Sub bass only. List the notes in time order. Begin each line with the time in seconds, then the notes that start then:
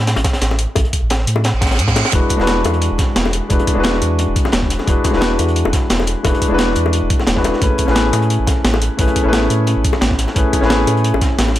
Already playing: A2
0.17 A1
0.42 A1
0.76 A1
1.02 A1
1.27 A2
1.54 A1
1.79 A2
2.13 E1
2.40 E1
2.65 E2
2.91 E1
3.16 E1
3.50 E1
3.77 E1
4.02 E2
4.28 E1
4.53 E1
4.87 E1
5.14 E1
5.39 E2
5.65 E1
5.90 E1
6.25 E1
6.51 E1
6.76 E2
7.02 E1
7.27 E1
7.62 A1
7.88 A1
8.13 A2
8.39 A1
8.64 A1
8.99 A1
9.25 A1
9.50 A2
9.77 A1
10.02 A1
10.36 A1
10.62 A1
10.87 A2
11.14 A1
11.39 A1